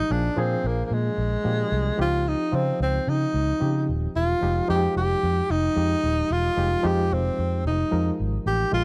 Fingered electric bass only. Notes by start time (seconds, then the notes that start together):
0.10 A#1
0.37 A#2
0.64 A#1
0.91 A#2
1.18 A#1
1.45 A#2
1.72 C2
1.99 C#2
2.53 C#3
2.80 C#2
3.08 C#3
3.34 C#2
3.62 C#3
3.89 D#1
4.16 E1
4.43 F1
4.69 F2
4.96 F1
5.23 F2
5.50 F1
5.76 F2
6.04 D#1
6.31 E1
6.57 F1
6.84 F2
7.12 F1
7.39 F2
7.65 F1
7.93 F2
8.20 G#1
8.46 A1
8.73 A#1